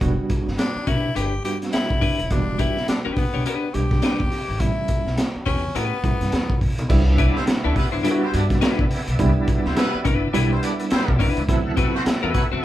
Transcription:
0.01 E1 F#3 B3 D4 F#4, kick, closed hi-hat
0.08 G3
0.30 kick, closed hi-hat
0.47 G1, snare
0.59 D4, snare, closed hi-hat
0.76 muted upright bass stroke
0.87 B1 D4 E4 G4 B4, kick, closed hi-hat
1.15 G1 D4 G4 B4, closed hi-hat
1.45 G3 B3 D4 F#4 G4, closed hi-hat
1.62 snare, closed hi-hat
1.73 E4, muted upright bass stroke, snare, closed hi-hat
1.90 G1, kick
2.01 D4 G4 B4, kick, open hi-hat
2.19 D#1, closed hi-hat
2.31 E1 F#3 B3 D4 F#4, kick, closed hi-hat
2.37 G3
2.59 D4 E4 G4 B4, kick, closed hi-hat
2.77 snare
2.88 D4, muted upright bass stroke, snare, closed hi-hat
3.05 G1 D4 G4 B4
3.16 B3, kick, open hi-hat
3.34 B1 D4 G4 C#5
3.46 B3 D4 G4 B4, closed hi-hat
3.74 B1 G3 B3 D4 G4, closed hi-hat
3.91 kick, snare
4.02 D4 G4 B4, snare, closed hi-hat
4.20 E2, kick
4.32 open hi-hat
4.49 G#1
4.60 A1 G3 B3 C#4 E4, kick, closed hi-hat
4.88 kick, closed hi-hat
5.06 B1, snare
5.18 snare, closed hi-hat
5.35 muted upright bass stroke
5.46 E2 C#4 G4 B4, kick, open hi-hat
5.75 A2 B3 C#4 G4 B4, closed hi-hat
6.04 A2 G3 B3 C#4 E4, kick, closed hi-hat
6.21 G2, snare, closed hi-hat
6.32 E2, snare, closed hi-hat
6.50 kick
6.61 A#1, kick, open hi-hat
6.78 B1, closed hi-hat
6.89 C2 G3 B3 D4 E4 D5 E5, kick, crash
7.18 B3 D4 E4 G4 B4 E5, kick, closed hi-hat
7.36 G3 C4 E4 C5, snare
7.47 snare, closed hi-hat
7.64 D2 A3 D4 E4 F#4 A4 B4
7.76 G3 B3 E4 B4, kick, open hi-hat
7.92 G2 D4 E4 C5
8.03 G3 B3 D4 E4 F4 B4, closed hi-hat
8.11 F#4
8.22 G3 C4 E4 C5
8.34 G2 B3 D4 G4 D5, closed hi-hat
8.50 kick, snare, closed hi-hat
8.61 D4 E4 B4, snare, closed hi-hat
8.79 C3, kick
8.91 open hi-hat
9.08 B1, closed hi-hat
9.19 C2 G3 B3 D4 E4, kick, closed hi-hat
9.48 kick, closed hi-hat
9.65 D2 G3 C4 E4 C5, snare
9.76 G3 B3 E4 B4, snare, closed hi-hat
9.94 muted upright bass stroke
10.05 G1 D4 E4 B4, kick, closed hi-hat
10.33 B1 G3 B3 D4 E4 B4, closed hi-hat
10.51 G3 C4 E4 C5
10.63 B3 D4 G4 D5, closed hi-hat
10.80 closed hi-hat
10.90 G3 C4 E4 C5, muted upright bass stroke, snare, closed hi-hat
11.08 B1, kick
11.19 D4 E4 B4, kick, open hi-hat
11.37 C#2, closed hi-hat
11.49 D2 F#3 B3 C4 E4 A4 F#5, kick, closed hi-hat
11.77 C4 E4 F#4 B4 E5, kick, closed hi-hat
11.95 A3 C4 F#4 C5, snare
12.06 muted upright bass stroke, snare, closed hi-hat
12.22 E2 F#3 A3 C4 E4 F#4 A4 B4
12.33 F#3 B3 E4 B4, kick, closed hi-hat
12.52 F#2 C4 F#4 C5

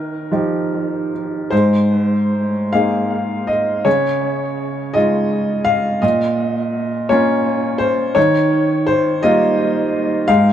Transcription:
Already playing: D#3 A#4
0.32 F3 D#4 G4
1.50 G#2 C5
2.73 A#3 D#4 G#4 F5
3.47 D#5
3.85 C#3 C#5
4.94 G#3 D#4 F4 D#5
5.65 F5
6.02 A#2 D#5
7.09 A#3 C#4 F4 C#5
7.78 C5
8.15 D#3 C#5
8.87 C5
9.23 G3 A#3 F4 D#5
10.28 G#2 F5

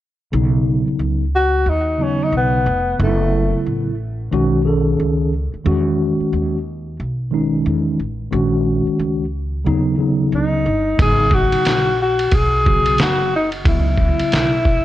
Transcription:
0.32 B1 C#3 F#3 B3 D#4
0.87 muted upright bass stroke
0.99 C#2
1.35 F#4
1.66 D#2 D#4
1.98 C#3 F#3 B3 D#4
2.03 C#4
2.24 D#4
2.33 B1
2.37 B3
2.66 F1
2.98 F#1 C#3 F#3 B3 D#4
3.03 A3 E4
3.53 muted upright bass stroke
3.67 A1
4.31 B1 D#3 G#3 C#4 F#4
4.65 D#3 C#4 G#4 A4
5.00 C#2
5.54 muted upright bass stroke
5.64 E2 D#3 G#3 C#4 F#4
6.20 muted upright bass stroke
6.32 D#2
7.00 B1
7.31 D#3 G#3 C#4 D#4
7.66 E2
7.99 A1
8.31 A#1 D#3 G#3 C#4 F#4
8.87 muted upright bass stroke
8.99 C#2
9.65 D#2 C#3 F#3 B3 D#4
9.97 C#3 F#3 B3 D#4
10.32 C#2 D#4
10.66 G1
10.97 G#1 C#3 F#3 B3 D#4, kick, ride
11.02 G#4
11.31 F#4, kick
11.52 muted upright bass stroke, ride
11.65 A#1, snare, hi-hat pedal, ride
12.02 F#4
12.19 ride
12.32 B1 G#4, kick, ride
12.65 C#3 F#3 B3 F#4, kick
12.86 ride
12.99 F#1 F#4, snare, hi-hat pedal, ride
13.36 D#4
13.52 ride
13.65 C#2 C#3 F#3 B3 E4, kick, ride
13.98 kick
14.20 muted upright bass stroke, ride
14.32 B1, snare, hi-hat pedal, ride
14.65 kick

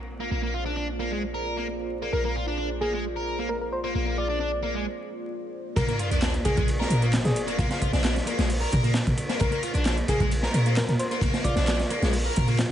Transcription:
Already playing: A#1 A#3 F4 G#4 C5 D5, impact
0.20 A#3
0.31 A#1 A#3
0.43 A#3
0.54 F4
0.66 D4
0.77 D4
1.00 A#3
1.11 G#3
1.34 A#4
1.57 A#3
2.02 A#3
2.13 A#1 A#3 A#4
2.25 A#3 A#4
2.36 F4
2.48 D4
2.59 D4
2.81 A#3 G#4
2.93 G#3
3.16 A#4
3.39 A#3
3.49 A#4
3.61 A#4
3.72 C5
3.84 A#3 C5
3.95 A#1 A#3
4.07 A#3
4.18 F4 D5
4.30 D4
4.40 D4
4.63 A#3
4.75 G#3
5.76 A#1 A#3 F4 G#4 A#4 C5 D5, kick, closed hi-hat, ride, sub drop
5.88 A#3 A#4, closed hi-hat
5.99 F4, closed hi-hat, ride
6.11 A#1 D4, closed hi-hat, ride
6.22 D4, snare, clap, closed hi-hat, ride
6.34 closed hi-hat
6.45 A#3 G#4, kick, closed hi-hat, ride
6.57 A#1 G#3, kick, closed hi-hat
6.68 closed hi-hat, ride
6.80 A#4, snare
6.90 A#2, closed hi-hat, ride
7.02 A#3, closed hi-hat
7.13 snare, clap, closed hi-hat, ride
7.25 A#2 G#4, snare, closed hi-hat
7.36 closed hi-hat, ride
7.48 A#3, closed hi-hat, ride
7.59 A#1 A#3 F4, kick, closed hi-hat, ride
7.71 A#3 F4, snare, closed hi-hat
7.82 F4, kick, closed hi-hat, ride
7.93 A#1 D4, snare, closed hi-hat
8.04 D4, snare, clap, closed hi-hat, ride
8.16 snare, closed hi-hat
8.27 A#3, closed hi-hat, ride
8.38 A#1 G#3, snare, closed hi-hat
8.50 closed hi-hat, open hi-hat
8.61 A#4
8.73 A#2, kick, closed hi-hat, ride
8.84 A#3, closed hi-hat, ride
8.94 snare, clap, closed hi-hat, ride
9.07 A#2, kick, closed hi-hat
9.17 closed hi-hat, ride
9.29 A#3, snare, closed hi-hat
9.40 A#1 A#3 A#4 F5, kick, closed hi-hat, ride
9.52 A#3 A#4, closed hi-hat
9.63 F4, closed hi-hat, ride
9.74 A#1 D4, closed hi-hat, ride
9.85 D4, snare, clap, closed hi-hat, ride
9.98 closed hi-hat
10.08 A#3 G#4, kick, closed hi-hat, ride
10.20 A#1 G#3, kick, closed hi-hat
10.31 closed hi-hat, ride
10.43 A#4, snare
10.54 A#2, closed hi-hat, ride
10.66 A#3, closed hi-hat
10.76 A#4, snare, clap, closed hi-hat, ride
10.88 A#2 A#4, snare, closed hi-hat
10.99 C5, closed hi-hat, ride
11.11 A#3 C5, closed hi-hat, ride
11.21 A#1 A#3, kick, closed hi-hat, ride
11.34 A#3, snare, closed hi-hat
11.44 F4 D5, kick, closed hi-hat, ride
11.56 A#1 D4, snare, closed hi-hat
11.67 D4, snare, clap, closed hi-hat, ride
11.80 snare, closed hi-hat
11.90 A#3, closed hi-hat, ride
12.02 A#1 G#3, snare, closed hi-hat
12.13 closed hi-hat, open hi-hat
12.25 A#4
12.36 A#2, kick, closed hi-hat, ride
12.48 A#3, closed hi-hat, ride
12.59 snare, clap, closed hi-hat, ride

